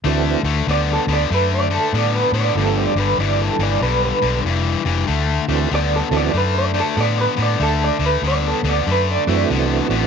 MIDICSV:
0, 0, Header, 1, 5, 480
1, 0, Start_track
1, 0, Tempo, 629591
1, 40, Time_signature, 4, 2, 24, 8
1, 7677, End_track
2, 0, Start_track
2, 0, Title_t, "Clean electric guitar"
2, 0, Program_c, 0, 27
2, 539, Note_on_c, 0, 74, 82
2, 684, Note_off_c, 0, 74, 0
2, 707, Note_on_c, 0, 69, 67
2, 848, Note_off_c, 0, 69, 0
2, 862, Note_on_c, 0, 74, 70
2, 1005, Note_off_c, 0, 74, 0
2, 1023, Note_on_c, 0, 71, 78
2, 1166, Note_off_c, 0, 71, 0
2, 1175, Note_on_c, 0, 74, 76
2, 1322, Note_off_c, 0, 74, 0
2, 1327, Note_on_c, 0, 69, 80
2, 1477, Note_off_c, 0, 69, 0
2, 1480, Note_on_c, 0, 74, 74
2, 1633, Note_off_c, 0, 74, 0
2, 1641, Note_on_c, 0, 71, 66
2, 1785, Note_off_c, 0, 71, 0
2, 1788, Note_on_c, 0, 74, 75
2, 1948, Note_off_c, 0, 74, 0
2, 1950, Note_on_c, 0, 69, 77
2, 2108, Note_off_c, 0, 69, 0
2, 2115, Note_on_c, 0, 74, 76
2, 2271, Note_off_c, 0, 74, 0
2, 2281, Note_on_c, 0, 71, 74
2, 2434, Note_off_c, 0, 71, 0
2, 2443, Note_on_c, 0, 74, 91
2, 2595, Note_off_c, 0, 74, 0
2, 2605, Note_on_c, 0, 69, 63
2, 2756, Note_off_c, 0, 69, 0
2, 2768, Note_on_c, 0, 74, 83
2, 2915, Note_off_c, 0, 74, 0
2, 2918, Note_on_c, 0, 71, 76
2, 3072, Note_off_c, 0, 71, 0
2, 3090, Note_on_c, 0, 71, 89
2, 3337, Note_off_c, 0, 71, 0
2, 4383, Note_on_c, 0, 74, 86
2, 4526, Note_off_c, 0, 74, 0
2, 4543, Note_on_c, 0, 69, 72
2, 4686, Note_off_c, 0, 69, 0
2, 4703, Note_on_c, 0, 74, 93
2, 4846, Note_off_c, 0, 74, 0
2, 4860, Note_on_c, 0, 71, 74
2, 5005, Note_off_c, 0, 71, 0
2, 5018, Note_on_c, 0, 74, 81
2, 5164, Note_off_c, 0, 74, 0
2, 5183, Note_on_c, 0, 69, 72
2, 5327, Note_off_c, 0, 69, 0
2, 5341, Note_on_c, 0, 74, 77
2, 5486, Note_off_c, 0, 74, 0
2, 5495, Note_on_c, 0, 71, 75
2, 5643, Note_off_c, 0, 71, 0
2, 5661, Note_on_c, 0, 74, 68
2, 5806, Note_off_c, 0, 74, 0
2, 5815, Note_on_c, 0, 69, 77
2, 5963, Note_off_c, 0, 69, 0
2, 5978, Note_on_c, 0, 74, 74
2, 6125, Note_off_c, 0, 74, 0
2, 6145, Note_on_c, 0, 71, 74
2, 6288, Note_off_c, 0, 71, 0
2, 6308, Note_on_c, 0, 74, 80
2, 6450, Note_off_c, 0, 74, 0
2, 6462, Note_on_c, 0, 69, 69
2, 6607, Note_off_c, 0, 69, 0
2, 6626, Note_on_c, 0, 74, 75
2, 6770, Note_off_c, 0, 74, 0
2, 6797, Note_on_c, 0, 71, 79
2, 6935, Note_off_c, 0, 71, 0
2, 6950, Note_on_c, 0, 74, 89
2, 7190, Note_off_c, 0, 74, 0
2, 7677, End_track
3, 0, Start_track
3, 0, Title_t, "Tonewheel organ"
3, 0, Program_c, 1, 16
3, 40, Note_on_c, 1, 57, 66
3, 42, Note_on_c, 1, 52, 67
3, 46, Note_on_c, 1, 60, 60
3, 47, Note_on_c, 1, 62, 60
3, 47, Note_on_c, 1, 66, 70
3, 314, Note_off_c, 1, 57, 0
3, 315, Note_off_c, 1, 52, 0
3, 317, Note_off_c, 1, 60, 0
3, 318, Note_off_c, 1, 62, 0
3, 318, Note_off_c, 1, 66, 0
3, 1956, Note_on_c, 1, 53, 59
3, 1957, Note_on_c, 1, 57, 51
3, 1958, Note_on_c, 1, 59, 57
3, 1964, Note_on_c, 1, 62, 58
3, 1969, Note_on_c, 1, 67, 71
3, 2231, Note_off_c, 1, 53, 0
3, 2232, Note_off_c, 1, 57, 0
3, 2232, Note_off_c, 1, 59, 0
3, 2235, Note_off_c, 1, 62, 0
3, 2237, Note_off_c, 1, 67, 0
3, 4177, Note_on_c, 1, 60, 65
3, 4178, Note_on_c, 1, 52, 71
3, 4180, Note_on_c, 1, 57, 61
3, 4184, Note_on_c, 1, 66, 79
3, 4185, Note_on_c, 1, 62, 69
3, 4337, Note_off_c, 1, 60, 0
3, 4338, Note_off_c, 1, 52, 0
3, 4339, Note_off_c, 1, 57, 0
3, 4341, Note_off_c, 1, 62, 0
3, 4341, Note_off_c, 1, 66, 0
3, 4658, Note_on_c, 1, 52, 73
3, 4662, Note_on_c, 1, 60, 67
3, 4663, Note_on_c, 1, 57, 65
3, 4664, Note_on_c, 1, 62, 68
3, 4666, Note_on_c, 1, 66, 80
3, 4818, Note_off_c, 1, 52, 0
3, 4820, Note_off_c, 1, 57, 0
3, 4820, Note_off_c, 1, 60, 0
3, 4821, Note_off_c, 1, 62, 0
3, 4822, Note_off_c, 1, 66, 0
3, 7062, Note_on_c, 1, 52, 73
3, 7063, Note_on_c, 1, 57, 65
3, 7063, Note_on_c, 1, 60, 68
3, 7067, Note_on_c, 1, 62, 67
3, 7070, Note_on_c, 1, 66, 80
3, 7677, Note_off_c, 1, 52, 0
3, 7677, Note_off_c, 1, 57, 0
3, 7677, Note_off_c, 1, 60, 0
3, 7677, Note_off_c, 1, 62, 0
3, 7677, Note_off_c, 1, 66, 0
3, 7677, End_track
4, 0, Start_track
4, 0, Title_t, "Overdriven electric guitar"
4, 0, Program_c, 2, 29
4, 31, Note_on_c, 2, 50, 79
4, 34, Note_on_c, 2, 57, 92
4, 310, Note_off_c, 2, 50, 0
4, 311, Note_off_c, 2, 57, 0
4, 339, Note_on_c, 2, 50, 76
4, 345, Note_on_c, 2, 57, 73
4, 498, Note_off_c, 2, 50, 0
4, 502, Note_off_c, 2, 57, 0
4, 519, Note_on_c, 2, 50, 75
4, 522, Note_on_c, 2, 59, 86
4, 793, Note_off_c, 2, 50, 0
4, 794, Note_off_c, 2, 59, 0
4, 826, Note_on_c, 2, 50, 68
4, 830, Note_on_c, 2, 59, 77
4, 981, Note_off_c, 2, 50, 0
4, 983, Note_off_c, 2, 59, 0
4, 1000, Note_on_c, 2, 50, 83
4, 1004, Note_on_c, 2, 57, 87
4, 1273, Note_off_c, 2, 50, 0
4, 1275, Note_off_c, 2, 57, 0
4, 1297, Note_on_c, 2, 50, 64
4, 1302, Note_on_c, 2, 57, 72
4, 1457, Note_off_c, 2, 50, 0
4, 1459, Note_off_c, 2, 57, 0
4, 1480, Note_on_c, 2, 50, 84
4, 1485, Note_on_c, 2, 59, 87
4, 1753, Note_off_c, 2, 50, 0
4, 1756, Note_off_c, 2, 59, 0
4, 1781, Note_on_c, 2, 50, 72
4, 1783, Note_on_c, 2, 59, 70
4, 1939, Note_off_c, 2, 50, 0
4, 1940, Note_off_c, 2, 59, 0
4, 1959, Note_on_c, 2, 43, 81
4, 1964, Note_on_c, 2, 50, 91
4, 2233, Note_off_c, 2, 43, 0
4, 2235, Note_off_c, 2, 50, 0
4, 2259, Note_on_c, 2, 43, 71
4, 2262, Note_on_c, 2, 50, 86
4, 2418, Note_off_c, 2, 43, 0
4, 2419, Note_off_c, 2, 50, 0
4, 2434, Note_on_c, 2, 43, 82
4, 2436, Note_on_c, 2, 52, 84
4, 2710, Note_off_c, 2, 43, 0
4, 2711, Note_off_c, 2, 52, 0
4, 2741, Note_on_c, 2, 43, 72
4, 2741, Note_on_c, 2, 52, 78
4, 2898, Note_off_c, 2, 43, 0
4, 2898, Note_off_c, 2, 52, 0
4, 2909, Note_on_c, 2, 43, 86
4, 2915, Note_on_c, 2, 50, 84
4, 3188, Note_off_c, 2, 43, 0
4, 3191, Note_off_c, 2, 50, 0
4, 3215, Note_on_c, 2, 43, 66
4, 3216, Note_on_c, 2, 50, 77
4, 3376, Note_off_c, 2, 43, 0
4, 3376, Note_off_c, 2, 50, 0
4, 3395, Note_on_c, 2, 43, 78
4, 3403, Note_on_c, 2, 52, 87
4, 3671, Note_off_c, 2, 43, 0
4, 3675, Note_off_c, 2, 52, 0
4, 3698, Note_on_c, 2, 43, 68
4, 3703, Note_on_c, 2, 52, 78
4, 3858, Note_off_c, 2, 43, 0
4, 3860, Note_off_c, 2, 52, 0
4, 3866, Note_on_c, 2, 50, 77
4, 3871, Note_on_c, 2, 57, 88
4, 4147, Note_off_c, 2, 50, 0
4, 4149, Note_off_c, 2, 57, 0
4, 4182, Note_on_c, 2, 50, 70
4, 4186, Note_on_c, 2, 57, 84
4, 4340, Note_off_c, 2, 50, 0
4, 4342, Note_off_c, 2, 57, 0
4, 4353, Note_on_c, 2, 50, 77
4, 4355, Note_on_c, 2, 59, 85
4, 4631, Note_off_c, 2, 50, 0
4, 4631, Note_off_c, 2, 59, 0
4, 4661, Note_on_c, 2, 50, 62
4, 4665, Note_on_c, 2, 59, 82
4, 4820, Note_off_c, 2, 50, 0
4, 4822, Note_off_c, 2, 59, 0
4, 4829, Note_on_c, 2, 50, 78
4, 4829, Note_on_c, 2, 57, 81
4, 5109, Note_off_c, 2, 50, 0
4, 5109, Note_off_c, 2, 57, 0
4, 5137, Note_on_c, 2, 50, 70
4, 5140, Note_on_c, 2, 57, 77
4, 5298, Note_off_c, 2, 50, 0
4, 5300, Note_off_c, 2, 57, 0
4, 5311, Note_on_c, 2, 50, 73
4, 5315, Note_on_c, 2, 59, 86
4, 5590, Note_off_c, 2, 50, 0
4, 5592, Note_off_c, 2, 59, 0
4, 5615, Note_on_c, 2, 50, 67
4, 5617, Note_on_c, 2, 59, 71
4, 5777, Note_off_c, 2, 50, 0
4, 5778, Note_off_c, 2, 59, 0
4, 5789, Note_on_c, 2, 50, 82
4, 5794, Note_on_c, 2, 57, 85
4, 6069, Note_off_c, 2, 50, 0
4, 6072, Note_off_c, 2, 57, 0
4, 6094, Note_on_c, 2, 50, 73
4, 6097, Note_on_c, 2, 57, 86
4, 6257, Note_off_c, 2, 50, 0
4, 6259, Note_off_c, 2, 57, 0
4, 6275, Note_on_c, 2, 50, 86
4, 6285, Note_on_c, 2, 59, 84
4, 6553, Note_off_c, 2, 50, 0
4, 6558, Note_off_c, 2, 59, 0
4, 6588, Note_on_c, 2, 50, 73
4, 6593, Note_on_c, 2, 59, 81
4, 6744, Note_off_c, 2, 50, 0
4, 6747, Note_off_c, 2, 59, 0
4, 6759, Note_on_c, 2, 50, 84
4, 6764, Note_on_c, 2, 57, 93
4, 7036, Note_off_c, 2, 50, 0
4, 7038, Note_off_c, 2, 57, 0
4, 7070, Note_on_c, 2, 50, 60
4, 7078, Note_on_c, 2, 57, 76
4, 7226, Note_off_c, 2, 50, 0
4, 7230, Note_off_c, 2, 57, 0
4, 7242, Note_on_c, 2, 50, 79
4, 7251, Note_on_c, 2, 59, 91
4, 7518, Note_off_c, 2, 50, 0
4, 7522, Note_off_c, 2, 59, 0
4, 7549, Note_on_c, 2, 50, 71
4, 7553, Note_on_c, 2, 59, 79
4, 7677, Note_off_c, 2, 50, 0
4, 7677, Note_off_c, 2, 59, 0
4, 7677, End_track
5, 0, Start_track
5, 0, Title_t, "Fingered electric bass"
5, 0, Program_c, 3, 33
5, 33, Note_on_c, 3, 38, 80
5, 258, Note_off_c, 3, 38, 0
5, 330, Note_on_c, 3, 38, 82
5, 462, Note_off_c, 3, 38, 0
5, 511, Note_on_c, 3, 38, 80
5, 736, Note_off_c, 3, 38, 0
5, 817, Note_on_c, 3, 38, 89
5, 946, Note_off_c, 3, 38, 0
5, 994, Note_on_c, 3, 42, 80
5, 1345, Note_off_c, 3, 42, 0
5, 1469, Note_on_c, 3, 45, 79
5, 1695, Note_off_c, 3, 45, 0
5, 1769, Note_on_c, 3, 45, 90
5, 1901, Note_off_c, 3, 45, 0
5, 1944, Note_on_c, 3, 31, 77
5, 2172, Note_off_c, 3, 31, 0
5, 2250, Note_on_c, 3, 31, 80
5, 2382, Note_off_c, 3, 31, 0
5, 2426, Note_on_c, 3, 31, 86
5, 2653, Note_off_c, 3, 31, 0
5, 2734, Note_on_c, 3, 31, 94
5, 2864, Note_off_c, 3, 31, 0
5, 2906, Note_on_c, 3, 35, 82
5, 3133, Note_off_c, 3, 35, 0
5, 3221, Note_on_c, 3, 35, 80
5, 3349, Note_off_c, 3, 35, 0
5, 3387, Note_on_c, 3, 29, 83
5, 3614, Note_off_c, 3, 29, 0
5, 3701, Note_on_c, 3, 29, 90
5, 3829, Note_off_c, 3, 29, 0
5, 3874, Note_on_c, 3, 38, 80
5, 4099, Note_off_c, 3, 38, 0
5, 4180, Note_on_c, 3, 38, 80
5, 4308, Note_off_c, 3, 38, 0
5, 4356, Note_on_c, 3, 38, 80
5, 4580, Note_off_c, 3, 38, 0
5, 4658, Note_on_c, 3, 38, 87
5, 4788, Note_off_c, 3, 38, 0
5, 4829, Note_on_c, 3, 42, 81
5, 5183, Note_off_c, 3, 42, 0
5, 5312, Note_on_c, 3, 45, 77
5, 5538, Note_off_c, 3, 45, 0
5, 5625, Note_on_c, 3, 45, 88
5, 5753, Note_off_c, 3, 45, 0
5, 5793, Note_on_c, 3, 38, 88
5, 6019, Note_off_c, 3, 38, 0
5, 6093, Note_on_c, 3, 38, 79
5, 6225, Note_off_c, 3, 38, 0
5, 6265, Note_on_c, 3, 38, 75
5, 6494, Note_off_c, 3, 38, 0
5, 6580, Note_on_c, 3, 38, 91
5, 6710, Note_off_c, 3, 38, 0
5, 6759, Note_on_c, 3, 42, 76
5, 6984, Note_off_c, 3, 42, 0
5, 7070, Note_on_c, 3, 42, 79
5, 7197, Note_off_c, 3, 42, 0
5, 7242, Note_on_c, 3, 36, 76
5, 7466, Note_off_c, 3, 36, 0
5, 7541, Note_on_c, 3, 33, 86
5, 7672, Note_off_c, 3, 33, 0
5, 7677, End_track
0, 0, End_of_file